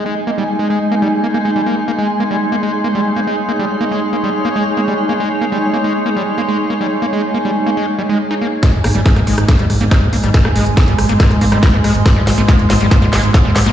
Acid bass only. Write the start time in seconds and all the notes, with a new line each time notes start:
0.06 G#3
0.27 A#3
0.38 G3
0.59 G#3
0.70 G#3
0.91 A#3
1.02 G3
1.24 A#3
1.34 A#3
1.45 G#3
1.56 G3
1.66 A#3
1.88 A#3
1.99 G#3
2.20 A#3
2.31 G3
2.52 A#3
2.63 G#3
2.84 A#3
2.95 G3
3.16 A#3
3.27 G#3
3.49 A#3
3.59 G3
3.81 A#3
3.91 G#3
4.13 A#3
4.24 G3
4.45 A#3
4.56 G#3
4.77 A#3
4.88 G3
5.09 A#3
5.20 G#3
5.41 A#3
5.52 G3
5.74 A#3
5.84 G#3
6.06 A#3
6.16 G3
6.38 A#3
6.49 G#3
6.70 A#3
6.81 G3
7.02 A#3
7.13 G#3
7.34 A#3
7.45 G3
7.66 A#3
7.77 G#3
7.99 G3
8.09 G#3
8.31 D#4
8.41 A#3
8.63 G#3
8.84 A#3
8.95 G3
9.16 A#3
9.27 G#3
9.49 A#3
9.59 G3
9.81 A#3
9.91 G#3
10.13 A#3
10.24 G3
10.45 A#3
10.56 G#3
10.77 A#3
10.88 G3
11.09 A#3
11.20 G#3
11.41 A#3
11.52 G3
11.73 A#3
11.84 G#3
12.06 A#3
12.16 G3
12.38 A#3
12.48 G#3
12.70 A#3
12.81 G3
13.02 A#3
13.13 G#3
13.34 A#3
13.45 G3
13.66 A#3